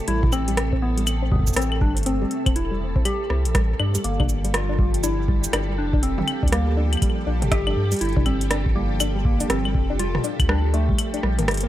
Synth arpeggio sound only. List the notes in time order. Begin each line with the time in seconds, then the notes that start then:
0.08 G3
0.33 C4
0.48 G3
0.73 C4
0.98 G3
1.22 C4
1.32 G3
1.57 C4
1.81 G3
2.06 C4
2.21 G3
2.46 C4
2.71 G3
2.96 C4
3.05 G3
3.30 C4
3.55 G3
3.80 D4
3.95 G3
4.20 D4
4.45 G3
4.69 D4
4.79 G3
5.04 D4
5.28 G3
5.53 D4
5.69 G3
5.93 D4
6.18 G3
6.43 D4
6.52 G3
6.77 D4
7.02 G3
7.27 D4
7.42 G3
7.67 D4
7.92 G3
8.16 D4
8.26 G3
8.51 D4
8.76 G3
9.00 D4
9.16 G3
9.40 D4
9.65 G3
9.90 D4
9.99 G3
10.24 D4
10.49 G3
10.74 D4
10.89 G3
11.14 D4
11.23 G3
11.39 A#3
11.63 A#3